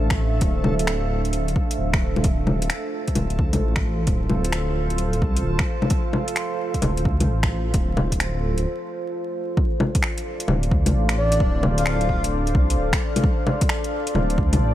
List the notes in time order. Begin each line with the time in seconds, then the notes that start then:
Already playing: A1 A3 D4 A4 C5 E5 F5
0.10 finger snap, kick
0.41 D1, kick, closed hi-hat
0.64 low bongo
0.79 closed hi-hat
0.87 finger snap, closed hi-hat
1.25 D1, closed hi-hat
1.33 closed hi-hat
1.48 closed hi-hat
1.56 kick
1.71 closed hi-hat
1.78 D1
1.94 finger snap, kick
2.16 low bongo
2.23 D1 F4 C5, kick, closed hi-hat
2.47 low bongo
2.62 closed hi-hat
2.70 finger snap, closed hi-hat
3.08 kick, closed hi-hat
3.15 D1, closed hi-hat, low bongo
3.30 closed hi-hat
3.39 D2, kick
3.53 closed hi-hat, low bongo
3.61 A1
3.76 finger snap, kick
4.07 D1, kick, closed hi-hat
4.29 low bongo
4.44 closed hi-hat
4.52 finger snap, closed hi-hat
4.90 D1, closed hi-hat
4.98 closed hi-hat
5.13 closed hi-hat
5.22 C2, kick
5.37 closed hi-hat
5.44 D1
5.59 finger snap, kick
5.82 low bongo
5.90 kick, closed hi-hat
6.13 low bongo
6.28 closed hi-hat
6.36 finger snap, closed hi-hat
6.74 kick, closed hi-hat
6.81 D1, closed hi-hat, low bongo
6.97 closed hi-hat
7.05 D2, kick
7.20 closed hi-hat, low bongo
7.28 A1
7.43 finger snap, kick
7.74 D1, kick, closed hi-hat
7.97 low bongo
8.12 kick, closed hi-hat
8.20 finger snap, closed hi-hat
8.57 D1, closed hi-hat
9.56 D4 A4 C5 D5 F5, kick
9.80 low bongo
9.95 kick, closed hi-hat
10.03 finger snap
10.18 closed hi-hat
10.40 closed hi-hat
10.48 D1, low bongo
10.63 closed hi-hat
10.71 D2, kick
10.86 closed hi-hat, low bongo
10.94 A1
11.09 finger snap, closed hi-hat
11.17 D5
11.32 closed hi-hat
11.40 D1, kick
11.63 low bongo
11.78 F5, closed hi-hat
11.86 finger snap
12.01 closed hi-hat
12.09 kick
12.24 D1, closed hi-hat
12.47 closed hi-hat
12.55 C2, kick
12.70 closed hi-hat
12.78 D1
12.93 finger snap, kick, closed hi-hat
13.16 closed hi-hat, low bongo
13.24 D5, kick
13.47 low bongo
13.61 kick, closed hi-hat
13.69 finger snap
13.84 closed hi-hat
14.07 closed hi-hat
14.15 D1, low bongo
14.30 closed hi-hat
14.38 D2, kick
14.53 closed hi-hat, low bongo
14.60 A1